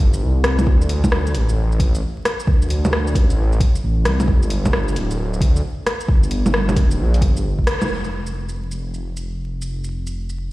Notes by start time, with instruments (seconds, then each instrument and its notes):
Already playing: detuned saw bass G1
0.13 shaker
0.22 detuned saw bass C2
0.44 detuned saw bass C2, cross-stick, open hi-hat
0.59 low bongo, shaker
0.67 detuned saw bass D2, kick
0.82 shaker
0.89 open hi-hat
1.04 kick, low bongo, shaker
1.12 cross-stick
1.27 shaker
1.35 detuned saw bass A1, open hi-hat
1.49 shaker
1.72 shaker
1.79 detuned saw bass A1, kick, open hi-hat
1.95 shaker
2.25 cross-stick, open hi-hat
2.40 shaker
2.47 detuned saw bass D2, kick
2.62 shaker
2.70 open hi-hat
2.85 low bongo, shaker
2.93 cross-stick
3.07 shaker
3.15 detuned saw bass A1, kick, open hi-hat
3.30 shaker
3.53 shaker
3.60 kick, open hi-hat
3.75 shaker
3.83 detuned saw bass A1
4.05 detuned saw bass C2, cross-stick, open hi-hat
4.20 low bongo, shaker
4.28 detuned saw bass G1, kick
4.43 shaker
4.50 open hi-hat
4.65 kick, low bongo, shaker
4.73 cross-stick
4.88 shaker
4.96 detuned saw bass D1, open hi-hat
5.11 shaker
5.33 shaker
5.40 detuned saw bass D2, kick, open hi-hat
5.56 shaker
5.86 cross-stick, open hi-hat
6.00 shaker
6.08 detuned saw bass G1, kick
6.23 shaker
6.31 open hi-hat
6.46 low bongo, shaker
6.54 cross-stick
6.69 low bongo, shaker
6.76 detuned saw bass D1, kick, open hi-hat
6.91 shaker
6.99 detuned saw bass A#1
7.14 open hi-hat, shaker
7.21 detuned saw bass G1, kick, open hi-hat
7.37 shaker
7.59 kick
7.67 cross-stick, open hi-hat
7.82 low bongo, shaker
7.90 detuned saw bass F1
8.04 shaker
8.27 shaker
8.49 shaker
8.71 shaker
8.94 shaker
9.17 shaker
9.62 shaker
9.84 shaker
10.07 shaker
10.30 shaker